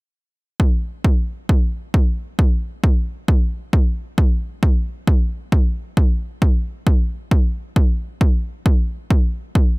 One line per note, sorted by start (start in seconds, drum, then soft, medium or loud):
0.60 kick loud
1.04 kick loud
1.49 kick loud
1.94 kick loud
2.39 kick loud
2.84 kick loud
3.28 kick loud
3.73 kick loud
4.18 kick loud
4.63 kick loud
5.07 kick loud
5.52 kick loud
5.97 kick loud
6.42 kick loud
6.87 kick loud
7.31 kick loud
7.76 kick loud
8.21 kick loud
8.66 kick loud
9.10 kick loud
9.55 kick loud